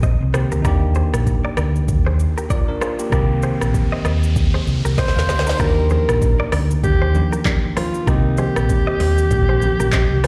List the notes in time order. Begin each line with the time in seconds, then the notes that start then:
Already playing: A#1 D#3 A#3 C4 G4
0.03 C5 D#5, kick, shaker
0.21 C2
0.33 D#3 A#3 C4 G4 G#4 C5, cross-stick, shaker
0.52 D2 G4 A#4, shaker
0.62 D#2 A#3 D4 D#4 G4 A#4, kick, cross-stick, riser, shaker
0.67 G4
0.95 G#4 C5, shaker
1.13 A#1, cross-stick, shaker
1.27 kick, shaker
1.45 A#4 D5
1.57 D2 A#4 D5, cross-stick, shaker
1.76 shaker
1.88 D#2, kick, shaker
2.06 G#4 C5
2.19 shaker
2.38 G4 A#4, shaker
2.50 F4 A#4 D5, kick, shaker
2.68 D4 A#4
2.81 F4 G#4 C5, cross-stick, shaker
2.99 A#3 G4, shaker
3.10 C2 D#3 A#3 C4 G4 A#4, kick, cross-stick, shaker
3.15 G4
3.42 G#4 C5, shaker
3.61 A#1, cross-stick, shaker
3.74 kick, shaker
3.92 C5 D#5
4.05 D#2 C5 D#5, cross-stick, shaker
4.23 shaker
4.36 kick, shaker
4.54 G#4 C5
4.67 C2, shaker
4.85 C2 G4 A#4, shaker
4.98 C5 D#5, kick, snare, shaker
5.08 snare
5.16 D#2 F5, snare
5.29 D2 G4 G#4 C5 D#5, snare, shaker
5.39 snare
5.47 D#4 G4 A#4 C5, snare, shaker
5.57 D#2 A#3 D4 D#4 G4 A#4, kick, cross-stick, shaker
5.62 F#4
5.69 G4
5.90 G#4 A#4 C5, high conga, shaker
6.09 A#1, cross-stick, shaker
6.22 kick, low conga, shaker
6.40 A#4 D5
6.52 D2 A#4 D5, cross-stick, open hi-hat, low conga, shaker
6.71 shaker
6.84 D#2 G4, kick, low conga, shaker
7.02 G#4 C5
7.13 D#3 A#3 D4 G4, high conga, shaker
7.32 G4 A#4, high conga, shaker
7.45 A#4 D5, kick, clap, high conga, shaker
7.77 F4 G#4 C5, cross-stick, open hi-hat, high conga, low conga, shaker
7.94 shaker
8.05 C2 D#3 A#3 C4 D#4 G4 A#4, kick, cross-stick, shaker
8.10 G4
8.37 G4 G#4 C5, high conga, shaker
8.56 A#1, cross-stick, shaker
8.69 kick, low conga, shaker
8.87 C5 D#5
9.00 D#2 C5 D#5, open hi-hat, low conga, shaker
9.18 shaker
9.31 A#1, kick, low conga, shaker
9.49 G#4 C5
9.62 high conga, shaker
9.79 A#1 G4 A#4, high conga, shaker
9.92 C5 D#5, kick, clap, high conga, shaker
10.11 C2
10.24 C5, cross-stick, open hi-hat, shaker